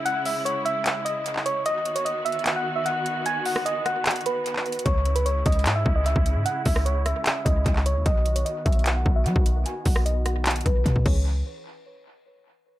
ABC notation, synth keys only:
X:1
M:4/4
L:1/16
Q:1/4=150
K:Bmix
V:1 name="Synth keys"
f2 e2 c2 e4 d4 c2 | d3 c d2 e3 f2 e f4 | g2 f2 d2 f4 B6 | c3 B c2 d3 e2 d e4 |
f2 e2 c2 e4 d4 c2 | d3 c d2 e3 f2 e f4 | g2 f2 d2 f4 B4 c2 | z16 |]